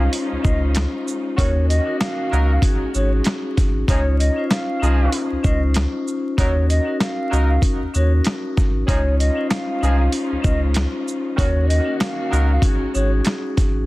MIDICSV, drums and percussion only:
0, 0, Header, 1, 2, 480
1, 0, Start_track
1, 0, Key_signature, -5, "major"
1, 0, Tempo, 625000
1, 1060, Time_signature, 4, 2, 24, 8
1, 10646, End_track
2, 0, Start_track
2, 0, Title_t, "Drums"
2, 98, Note_on_c, 9, 42, 93
2, 175, Note_off_c, 9, 42, 0
2, 342, Note_on_c, 9, 36, 102
2, 342, Note_on_c, 9, 82, 58
2, 419, Note_off_c, 9, 36, 0
2, 419, Note_off_c, 9, 82, 0
2, 573, Note_on_c, 9, 42, 75
2, 581, Note_on_c, 9, 26, 71
2, 589, Note_on_c, 9, 38, 119
2, 596, Note_on_c, 9, 40, 90
2, 649, Note_off_c, 9, 42, 0
2, 658, Note_off_c, 9, 26, 0
2, 666, Note_off_c, 9, 38, 0
2, 673, Note_off_c, 9, 40, 0
2, 827, Note_on_c, 9, 82, 54
2, 904, Note_off_c, 9, 82, 0
2, 1060, Note_on_c, 9, 36, 114
2, 1065, Note_on_c, 9, 42, 95
2, 1137, Note_off_c, 9, 36, 0
2, 1142, Note_off_c, 9, 42, 0
2, 1308, Note_on_c, 9, 42, 51
2, 1308, Note_on_c, 9, 82, 50
2, 1384, Note_off_c, 9, 42, 0
2, 1384, Note_off_c, 9, 82, 0
2, 1540, Note_on_c, 9, 26, 82
2, 1542, Note_on_c, 9, 38, 111
2, 1544, Note_on_c, 9, 42, 77
2, 1549, Note_on_c, 9, 40, 88
2, 1617, Note_off_c, 9, 26, 0
2, 1618, Note_off_c, 9, 38, 0
2, 1621, Note_off_c, 9, 42, 0
2, 1626, Note_off_c, 9, 40, 0
2, 1790, Note_on_c, 9, 82, 47
2, 1867, Note_off_c, 9, 82, 0
2, 2012, Note_on_c, 9, 36, 91
2, 2017, Note_on_c, 9, 42, 89
2, 2089, Note_off_c, 9, 36, 0
2, 2094, Note_off_c, 9, 42, 0
2, 2261, Note_on_c, 9, 82, 59
2, 2338, Note_off_c, 9, 82, 0
2, 2492, Note_on_c, 9, 42, 74
2, 2500, Note_on_c, 9, 26, 70
2, 2509, Note_on_c, 9, 38, 113
2, 2516, Note_on_c, 9, 40, 89
2, 2569, Note_off_c, 9, 42, 0
2, 2577, Note_off_c, 9, 26, 0
2, 2585, Note_off_c, 9, 38, 0
2, 2592, Note_off_c, 9, 40, 0
2, 2745, Note_on_c, 9, 38, 35
2, 2746, Note_on_c, 9, 36, 98
2, 2747, Note_on_c, 9, 42, 53
2, 2747, Note_on_c, 9, 82, 55
2, 2821, Note_off_c, 9, 38, 0
2, 2823, Note_off_c, 9, 36, 0
2, 2824, Note_off_c, 9, 42, 0
2, 2824, Note_off_c, 9, 82, 0
2, 2980, Note_on_c, 9, 36, 117
2, 2985, Note_on_c, 9, 42, 96
2, 3057, Note_off_c, 9, 36, 0
2, 3062, Note_off_c, 9, 42, 0
2, 3227, Note_on_c, 9, 42, 52
2, 3227, Note_on_c, 9, 82, 52
2, 3304, Note_off_c, 9, 42, 0
2, 3304, Note_off_c, 9, 82, 0
2, 3460, Note_on_c, 9, 26, 79
2, 3462, Note_on_c, 9, 38, 110
2, 3464, Note_on_c, 9, 42, 74
2, 3469, Note_on_c, 9, 40, 88
2, 3537, Note_off_c, 9, 26, 0
2, 3538, Note_off_c, 9, 38, 0
2, 3541, Note_off_c, 9, 42, 0
2, 3546, Note_off_c, 9, 40, 0
2, 3710, Note_on_c, 9, 82, 47
2, 3787, Note_off_c, 9, 82, 0
2, 3936, Note_on_c, 9, 42, 92
2, 4013, Note_off_c, 9, 42, 0
2, 4180, Note_on_c, 9, 82, 58
2, 4181, Note_on_c, 9, 36, 106
2, 4256, Note_off_c, 9, 82, 0
2, 4258, Note_off_c, 9, 36, 0
2, 4411, Note_on_c, 9, 42, 75
2, 4421, Note_on_c, 9, 26, 69
2, 4427, Note_on_c, 9, 38, 112
2, 4435, Note_on_c, 9, 40, 91
2, 4487, Note_off_c, 9, 42, 0
2, 4498, Note_off_c, 9, 26, 0
2, 4504, Note_off_c, 9, 38, 0
2, 4511, Note_off_c, 9, 40, 0
2, 4666, Note_on_c, 9, 82, 54
2, 4743, Note_off_c, 9, 82, 0
2, 4900, Note_on_c, 9, 36, 113
2, 4904, Note_on_c, 9, 42, 97
2, 4976, Note_off_c, 9, 36, 0
2, 4980, Note_off_c, 9, 42, 0
2, 5146, Note_on_c, 9, 42, 52
2, 5146, Note_on_c, 9, 82, 52
2, 5223, Note_off_c, 9, 42, 0
2, 5223, Note_off_c, 9, 82, 0
2, 5380, Note_on_c, 9, 38, 117
2, 5381, Note_on_c, 9, 26, 84
2, 5382, Note_on_c, 9, 42, 75
2, 5387, Note_on_c, 9, 40, 89
2, 5457, Note_off_c, 9, 26, 0
2, 5457, Note_off_c, 9, 38, 0
2, 5459, Note_off_c, 9, 42, 0
2, 5464, Note_off_c, 9, 40, 0
2, 5629, Note_on_c, 9, 82, 49
2, 5706, Note_off_c, 9, 82, 0
2, 5852, Note_on_c, 9, 36, 93
2, 5856, Note_on_c, 9, 42, 90
2, 5929, Note_off_c, 9, 36, 0
2, 5933, Note_off_c, 9, 42, 0
2, 6101, Note_on_c, 9, 82, 59
2, 6178, Note_off_c, 9, 82, 0
2, 6332, Note_on_c, 9, 42, 78
2, 6340, Note_on_c, 9, 26, 71
2, 6349, Note_on_c, 9, 38, 119
2, 6356, Note_on_c, 9, 40, 93
2, 6409, Note_off_c, 9, 42, 0
2, 6417, Note_off_c, 9, 26, 0
2, 6426, Note_off_c, 9, 38, 0
2, 6433, Note_off_c, 9, 40, 0
2, 6584, Note_on_c, 9, 38, 37
2, 6586, Note_on_c, 9, 36, 102
2, 6587, Note_on_c, 9, 82, 53
2, 6661, Note_off_c, 9, 38, 0
2, 6663, Note_off_c, 9, 36, 0
2, 6664, Note_off_c, 9, 82, 0
2, 6820, Note_on_c, 9, 36, 113
2, 6825, Note_on_c, 9, 42, 96
2, 6897, Note_off_c, 9, 36, 0
2, 6902, Note_off_c, 9, 42, 0
2, 7067, Note_on_c, 9, 42, 52
2, 7067, Note_on_c, 9, 82, 51
2, 7144, Note_off_c, 9, 42, 0
2, 7144, Note_off_c, 9, 82, 0
2, 7299, Note_on_c, 9, 26, 83
2, 7301, Note_on_c, 9, 38, 115
2, 7303, Note_on_c, 9, 42, 77
2, 7308, Note_on_c, 9, 40, 89
2, 7376, Note_off_c, 9, 26, 0
2, 7378, Note_off_c, 9, 38, 0
2, 7380, Note_off_c, 9, 42, 0
2, 7385, Note_off_c, 9, 40, 0
2, 7550, Note_on_c, 9, 82, 47
2, 7626, Note_off_c, 9, 82, 0
2, 7776, Note_on_c, 9, 42, 92
2, 7853, Note_off_c, 9, 42, 0
2, 8020, Note_on_c, 9, 82, 58
2, 8021, Note_on_c, 9, 36, 105
2, 8097, Note_off_c, 9, 82, 0
2, 8098, Note_off_c, 9, 36, 0
2, 8251, Note_on_c, 9, 42, 76
2, 8260, Note_on_c, 9, 26, 71
2, 8268, Note_on_c, 9, 38, 119
2, 8275, Note_on_c, 9, 40, 92
2, 8328, Note_off_c, 9, 42, 0
2, 8337, Note_off_c, 9, 26, 0
2, 8345, Note_off_c, 9, 38, 0
2, 8352, Note_off_c, 9, 40, 0
2, 8507, Note_on_c, 9, 82, 55
2, 8584, Note_off_c, 9, 82, 0
2, 8740, Note_on_c, 9, 36, 113
2, 8745, Note_on_c, 9, 42, 93
2, 8817, Note_off_c, 9, 36, 0
2, 8822, Note_off_c, 9, 42, 0
2, 8987, Note_on_c, 9, 42, 51
2, 8987, Note_on_c, 9, 82, 53
2, 9064, Note_off_c, 9, 42, 0
2, 9064, Note_off_c, 9, 82, 0
2, 9219, Note_on_c, 9, 26, 84
2, 9222, Note_on_c, 9, 38, 112
2, 9224, Note_on_c, 9, 42, 73
2, 9229, Note_on_c, 9, 40, 93
2, 9295, Note_off_c, 9, 26, 0
2, 9299, Note_off_c, 9, 38, 0
2, 9301, Note_off_c, 9, 42, 0
2, 9306, Note_off_c, 9, 40, 0
2, 9470, Note_on_c, 9, 82, 50
2, 9547, Note_off_c, 9, 82, 0
2, 9692, Note_on_c, 9, 36, 95
2, 9697, Note_on_c, 9, 42, 95
2, 9769, Note_off_c, 9, 36, 0
2, 9774, Note_off_c, 9, 42, 0
2, 9941, Note_on_c, 9, 82, 56
2, 10018, Note_off_c, 9, 82, 0
2, 10172, Note_on_c, 9, 42, 74
2, 10179, Note_on_c, 9, 26, 71
2, 10189, Note_on_c, 9, 38, 116
2, 10196, Note_on_c, 9, 40, 94
2, 10249, Note_off_c, 9, 42, 0
2, 10256, Note_off_c, 9, 26, 0
2, 10266, Note_off_c, 9, 38, 0
2, 10273, Note_off_c, 9, 40, 0
2, 10424, Note_on_c, 9, 38, 37
2, 10425, Note_on_c, 9, 36, 100
2, 10427, Note_on_c, 9, 42, 54
2, 10427, Note_on_c, 9, 82, 54
2, 10501, Note_off_c, 9, 38, 0
2, 10502, Note_off_c, 9, 36, 0
2, 10504, Note_off_c, 9, 42, 0
2, 10504, Note_off_c, 9, 82, 0
2, 10646, End_track
0, 0, End_of_file